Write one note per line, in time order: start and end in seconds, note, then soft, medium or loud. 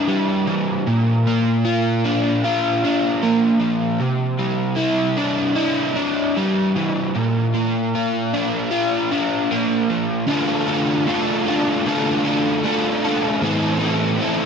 0.00 2.04 D4 medium
0.00 0.87 E4 medium
0.08 0.87 G3 medium
0.47 0.86 E3 medium
0.87 2.83 A#2 medium
1.27 3.21 A#3 medium
1.65 2.43 F4 medium
2.04 2.84 D4 medium
2.44 4.01 F4 medium
2.84 4.03 D4 medium
3.22 4.01 A#3 medium
3.60 4.00 F3 medium
4.00 5.97 C3 medium
4.39 6.35 G3 medium
4.77 5.54 E4 medium
5.17 5.95 D4 medium
5.56 7.14 E4 medium
5.96 8.33 D4 medium
6.37 7.15 G3 medium
6.76 7.15 E3 medium
7.15 9.11 A#2 medium
7.54 9.50 A#3 medium
7.95 8.70 F4 medium
8.33 9.10 D4 medium
8.71 10.28 F4 medium
9.12 10.28 D4 medium
9.51 10.28 A#3 medium
9.90 10.27 F3 medium
10.27 11.07 D3 medium
10.27 11.06 A3 medium
10.27 10.69 D4 loud
10.27 10.68 F4 loud
10.27 10.67 A4 loud
10.67 11.06 D4 medium
10.67 11.07 F4 medium
10.67 11.09 A4 medium
11.07 11.86 A3 medium
11.07 11.48 D4 medium
11.07 11.47 F4 medium
11.07 11.46 A4 medium
11.46 11.86 D4 medium
11.46 11.87 F4 medium
11.46 11.87 A4 medium
11.86 12.64 D3 loud
11.86 12.63 A3 loud
11.86 12.26 D4 loud
11.86 12.25 F4 loud
11.86 12.23 A4 loud
12.24 12.64 D4 medium
12.24 12.64 F4 medium
12.24 12.65 A4 medium
12.64 13.40 A3 medium
12.64 13.05 D4 medium
12.64 13.04 F4 medium
12.64 13.03 A4 medium
13.04 13.42 D4 medium
13.04 13.41 F4 medium
13.04 13.41 A4 medium
13.42 14.20 A2 medium
13.42 14.46 E3 medium
13.42 13.81 A3 loud
13.42 13.81 C4 loud
13.42 13.81 E4 medium
13.42 13.78 A4 loud
13.80 14.18 A3 medium
13.80 14.20 C4 medium
13.80 14.21 E4 medium
13.80 14.21 A4 medium
14.19 14.46 A3 medium
14.19 14.46 C4 medium
14.19 14.46 E4 medium
14.19 14.46 A4 medium